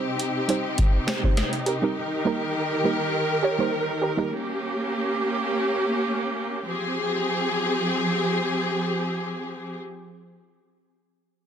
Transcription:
Already playing: C3 C4 D#4 G4
0.20 closed hi-hat
0.48 G3 C4 D#4 G4 C5, closed hi-hat
0.78 kick, closed hi-hat
1.07 G4 C5, snare, closed hi-hat
1.23 G3 C4 D#4 G4 C5, kick
1.37 cross-stick, snare, closed hi-hat
1.53 closed hi-hat
1.66 G4 A#4, closed hi-hat
1.82 G3 C4 D#4 G4 A#4
1.96 D#3 G4 A#4
2.25 G3 A#3 D#4 G4 A#4
2.84 G3 A#3 D#4 G4 A#4
3.43 G4 C#5
3.58 G3 A#3 D#4 G4 C5
4.02 G4 A#4
4.17 G3 A#3 D#4 G4 A#4
4.32 A#3 C#4 G4
6.67 F3 C4 G4 G#4

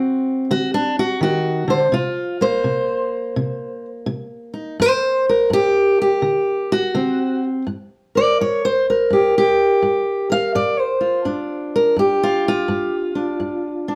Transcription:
Already playing: D3 C4 F#4
0.51 D3 F#4
0.74 D4
0.99 F#4
1.21 D#3 F#4
1.68 D3 C5
1.92 C3 F4
2.41 A#3 C5
2.64 C3
3.36 C3
4.06 C3
4.54 D#4
4.80 G2 C5
5.29 A#4
5.50 G2 G4
6.02 G4
6.22 D3
6.72 F#4
6.95 D3 C4
7.67 G2
8.15 A#4 D5
8.41 G2 C#5
8.65 C5
8.90 A#4
9.10 G2 G4
9.38 G4
9.82 G2
10.30 A#4 F5
10.55 G2 D5
10.80 C5
11.01 F4
11.25 G2 D4
11.76 A#4
11.96 G2 G4
12.23 F4
12.48 F4
12.68 G2
13.15 D4
13.40 G2
13.88 D4

